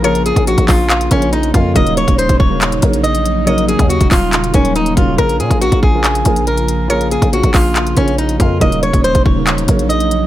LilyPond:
<<
  \new Staff \with { instrumentName = "Synth pluck" } { \time 4/4 \key bes \minor \tempo 4 = 140 des''4 r4 f''2 | ees''4 r2. | des''4 r2. | bes'4 r2. |
des''4 r4 f''2 | ees''4 r2. | }
  \new Staff \with { instrumentName = "Steel-string acoustic guitar" } { \time 4/4 \key bes \minor bes'8 aes'8 ges'8 f'4 des'8 ees'8 f'8 | ees''8 des''8 c''8 des''4. ees''4 | ees''8 aes'8 ges'8 f'4 des'8 ees'8 f'8 | bes'8 aes'8 ges'8 aes'4. bes'4 |
bes'8 aes'8 ges'8 f'4 des'8 ees'8 f'8 | ees''8 des''8 c''8 des''4. ees''4 | }
  \new Staff \with { instrumentName = "Grand piano" } { \time 4/4 \key bes \minor <des f bes f' aes'>4~ <des f bes f' aes'>16 r4 r16 <des f bes f' bes'>8. r16 <des f bes f' bes'>16 r16 | <des ges bes ees' bes'>4 r8. <des ges bes ees' bes'>8 r16 <des ges bes ees' bes'>4 r8 | <des ges bes ees' bes'>4~ <des ges bes ees' bes'>16 r4 r16 <des ges bes ees' bes'>8. r16 <des ges bes ees' bes'>16 r16 | <des f bes f' bes'>4 r8. <des f bes f' bes'>8 r16 <des f bes f' bes'>4 r8 |
<des f bes f' aes'>4~ <des f bes f' aes'>16 r4 r16 <des f bes f' bes'>8. r16 <des f bes f' bes'>16 r16 | <des ges bes ees' bes'>4 r8. <des ges bes ees' bes'>8 r16 <des ges bes ees' bes'>4 r8 | }
  \new Staff \with { instrumentName = "Analog synth pad" } { \clef bass \time 4/4 \key bes \minor << { <f f'>1 | <ges ees'>1~ | <ges ees'>1 | <f f'>1~ |
<f f'>1 | <ges ees'>1 | } \\ { <des bes>1~ | <des bes>1~ | <des bes>1~ | <des bes>1~ |
<des bes>1 | <des bes>1 | } >> }
  \new Staff \with { instrumentName = "808-style bass" } { \clef bass \time 4/4 \key bes \minor bes,,8. bes,,8 bes,,4~ bes,,16 bes,,4 f,8 | ees,,8. ees,,8 ees,,4~ ees,,16 bes,,4.~ | bes,,8. ees,8 ees,,4~ ees,,16 ees,,4 ees,,8 | bes,,8 bes,16 bes,,8 bes,,4~ bes,,16 bes,,4.~ |
bes,,8. bes,,8 bes,,4~ bes,,16 bes,,4 f,8 | ees,,8. ees,,8 ees,,16 ees,,4 bes,,4. | }
  \new DrumStaff \with { instrumentName = "Drums" } \drummode { \time 4/4 hh16 hh16 hh16 <hh bd>16 hh16 <hh bd>16 <hc hho bd>8 <hc hh>16 hh16 <hh bd>16 hh16 hh16 hh16 <hh bd>8 | <hh bd>16 hh16 hh16 <hh bd>16 hh16 <hh bd>16 bd8 <hc hh>16 hh16 <hh bd>16 hh16 hh16 hh16 hh8 | hh16 hh16 hh16 <hh bd>16 hh16 <hh bd>16 <hc hho bd>8 <hc hh>16 hh16 <hh bd>16 hh16 hh16 hh16 <hh bd>8 | <hh bd>16 hh16 hh16 <hh bd>16 hh16 <hh bd>16 bd8 <hc hh>16 hh16 <hh bd>16 hh16 hh16 hh16 hh8 |
hh16 hh16 hh16 <hh bd>16 hh16 <hh bd>16 <hc hho bd>8 <hc hh>16 hh16 <hh bd>16 hh16 hh16 hh16 <hh bd>8 | <hh bd>16 hh16 hh16 <hh bd>16 hh16 <hh bd>16 bd8 <hc hh>16 hh16 <hh bd>16 hh16 hh16 hh16 hh8 | }
>>